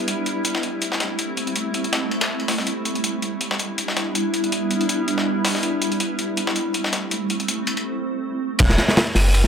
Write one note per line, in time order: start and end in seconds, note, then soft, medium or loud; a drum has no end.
0.00 2.63 G3 medium
0.00 2.64 A3 medium
0.00 2.64 C4 medium
0.00 2.63 E4 medium
0.08 closed hi-hat medium
0.26 closed hi-hat medium
0.45 closed hi-hat medium
0.55 snare soft
0.63 closed hi-hat medium
0.82 closed hi-hat medium
0.92 snare soft
1.00 snare soft
1.00 closed hi-hat medium
1.19 closed hi-hat medium
1.37 closed hi-hat medium
1.47 closed hi-hat soft
1.56 closed hi-hat medium
1.74 closed hi-hat medium
1.84 closed hi-hat soft
1.93 snare medium
1.93 closed hi-hat medium
2.11 closed hi-hat medium
2.21 snare medium
2.21 closed hi-hat medium
2.40 closed hi-hat medium
2.48 snare medium
2.48 open hi-hat medium
2.58 snare soft
2.67 8.55 G3 medium
2.67 5.60 B3 medium
2.67 5.60 D4 medium
2.67 8.55 E4 medium
2.67 closed hi-hat medium
2.85 closed hi-hat medium
2.95 closed hi-hat soft
3.04 closed hi-hat medium
3.22 closed hi-hat medium
3.41 closed hi-hat medium
3.51 snare soft
3.59 closed hi-hat medium
3.78 closed hi-hat medium
3.88 snare soft
3.97 snare soft
3.97 closed hi-hat medium
4.15 closed hi-hat medium
4.34 closed hi-hat medium
4.44 closed hi-hat soft
4.52 closed hi-hat medium
4.71 closed hi-hat medium
4.81 closed hi-hat soft
4.89 closed hi-hat medium
5.08 closed hi-hat medium
5.18 snare soft
5.45 snare medium
5.45 open hi-hat medium
5.55 snare soft
5.63 8.56 A3 medium
5.63 8.56 C4 medium
5.63 closed hi-hat medium
5.82 closed hi-hat medium
5.92 closed hi-hat soft
6.00 closed hi-hat medium
6.19 closed hi-hat medium
6.37 closed hi-hat medium
6.47 snare soft
6.56 closed hi-hat medium
6.74 closed hi-hat medium
6.84 snare soft
6.93 snare soft
6.93 closed hi-hat medium
7.11 closed hi-hat medium
7.30 closed hi-hat medium
7.40 closed hi-hat soft
7.48 closed hi-hat medium
7.67 closed hi-hat medium
7.77 closed hi-hat soft
8.59 8.77 E1 loud
8.59 kick loud
8.59 crash medium
8.59 ride loud
8.69 snare medium
8.78 snare soft
8.78 ride medium
8.88 snare medium
8.97 snare loud
8.97 ride medium
9.07 ride soft
9.15 9.47 F#1 loud
9.15 snare medium
9.15 open hi-hat medium
9.34 ride loud
9.44 snare soft